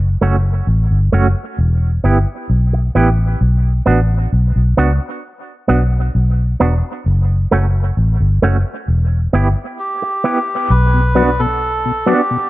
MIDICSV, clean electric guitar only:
0, 0, Header, 1, 3, 480
1, 0, Start_track
1, 0, Key_signature, 2, "minor"
1, 0, Tempo, 911854
1, 1792, Time_signature, 4, 2, 24, 8
1, 6578, End_track
2, 0, Start_track
2, 0, Title_t, "Clean electric guitar"
2, 0, Program_c, 0, 27
2, 113, Note_on_c, 0, 57, 61
2, 118, Note_on_c, 0, 61, 69
2, 121, Note_on_c, 0, 66, 77
2, 182, Note_off_c, 0, 57, 0
2, 185, Note_off_c, 0, 61, 0
2, 187, Note_off_c, 0, 66, 0
2, 592, Note_on_c, 0, 57, 85
2, 597, Note_on_c, 0, 61, 86
2, 601, Note_on_c, 0, 66, 96
2, 662, Note_off_c, 0, 57, 0
2, 665, Note_off_c, 0, 61, 0
2, 667, Note_off_c, 0, 66, 0
2, 1073, Note_on_c, 0, 59, 67
2, 1079, Note_on_c, 0, 64, 78
2, 1081, Note_on_c, 0, 67, 78
2, 1142, Note_off_c, 0, 59, 0
2, 1146, Note_off_c, 0, 64, 0
2, 1147, Note_off_c, 0, 67, 0
2, 1553, Note_on_c, 0, 59, 82
2, 1557, Note_on_c, 0, 64, 83
2, 1562, Note_on_c, 0, 67, 89
2, 1623, Note_off_c, 0, 59, 0
2, 1625, Note_off_c, 0, 64, 0
2, 1627, Note_off_c, 0, 67, 0
2, 2031, Note_on_c, 0, 59, 70
2, 2035, Note_on_c, 0, 62, 67
2, 2038, Note_on_c, 0, 66, 85
2, 2102, Note_off_c, 0, 59, 0
2, 2104, Note_off_c, 0, 62, 0
2, 2105, Note_off_c, 0, 66, 0
2, 2513, Note_on_c, 0, 59, 75
2, 2516, Note_on_c, 0, 62, 77
2, 2520, Note_on_c, 0, 66, 85
2, 2583, Note_off_c, 0, 59, 0
2, 2584, Note_off_c, 0, 62, 0
2, 2586, Note_off_c, 0, 66, 0
2, 2990, Note_on_c, 0, 59, 77
2, 2996, Note_on_c, 0, 62, 65
2, 2999, Note_on_c, 0, 66, 81
2, 3062, Note_off_c, 0, 59, 0
2, 3064, Note_off_c, 0, 62, 0
2, 3066, Note_off_c, 0, 66, 0
2, 3474, Note_on_c, 0, 59, 71
2, 3478, Note_on_c, 0, 62, 70
2, 3482, Note_on_c, 0, 66, 67
2, 3544, Note_off_c, 0, 59, 0
2, 3545, Note_off_c, 0, 62, 0
2, 3547, Note_off_c, 0, 66, 0
2, 3956, Note_on_c, 0, 57, 59
2, 3959, Note_on_c, 0, 61, 67
2, 3964, Note_on_c, 0, 66, 71
2, 4024, Note_off_c, 0, 57, 0
2, 4026, Note_off_c, 0, 61, 0
2, 4028, Note_off_c, 0, 66, 0
2, 4434, Note_on_c, 0, 57, 84
2, 4439, Note_on_c, 0, 61, 80
2, 4443, Note_on_c, 0, 66, 81
2, 4504, Note_off_c, 0, 57, 0
2, 4506, Note_off_c, 0, 61, 0
2, 4508, Note_off_c, 0, 66, 0
2, 4912, Note_on_c, 0, 59, 79
2, 4920, Note_on_c, 0, 64, 88
2, 4922, Note_on_c, 0, 67, 84
2, 4982, Note_off_c, 0, 59, 0
2, 4986, Note_off_c, 0, 64, 0
2, 4987, Note_off_c, 0, 67, 0
2, 5390, Note_on_c, 0, 59, 70
2, 5394, Note_on_c, 0, 64, 74
2, 5398, Note_on_c, 0, 67, 79
2, 5461, Note_off_c, 0, 59, 0
2, 5463, Note_off_c, 0, 64, 0
2, 5465, Note_off_c, 0, 67, 0
2, 5870, Note_on_c, 0, 59, 77
2, 5875, Note_on_c, 0, 62, 83
2, 5879, Note_on_c, 0, 66, 87
2, 5941, Note_off_c, 0, 59, 0
2, 5943, Note_off_c, 0, 62, 0
2, 5945, Note_off_c, 0, 66, 0
2, 6350, Note_on_c, 0, 59, 79
2, 6355, Note_on_c, 0, 62, 86
2, 6359, Note_on_c, 0, 66, 84
2, 6421, Note_off_c, 0, 59, 0
2, 6423, Note_off_c, 0, 62, 0
2, 6425, Note_off_c, 0, 66, 0
2, 6578, End_track
3, 0, Start_track
3, 0, Title_t, "Muted clean electric guitar strokes"
3, 1438, Note_on_c, 9, 29, 41
3, 1491, Note_off_c, 9, 29, 0
3, 5276, Note_on_c, 9, 29, 42
3, 5329, Note_off_c, 9, 29, 0
3, 6578, End_track
0, 0, End_of_file